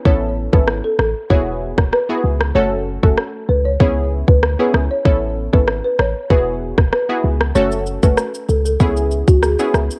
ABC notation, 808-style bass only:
X:1
M:4/4
L:1/16
Q:1/4=96
K:A
V:1 name="808-style bass" clef=bass
A,,,3 G,,,2 z A,,, z E,,,3 E,,, z2 C,,2 | F,,,3 F,,, z2 C,,2 C,,3 D,,2 z C,, z | A,,,3 G,,,2 z A,,, z E,,,3 E,,, z2 C,,2 | F,,,3 F,,, z2 C,,2 C,,3 D,,2 z C,, z |]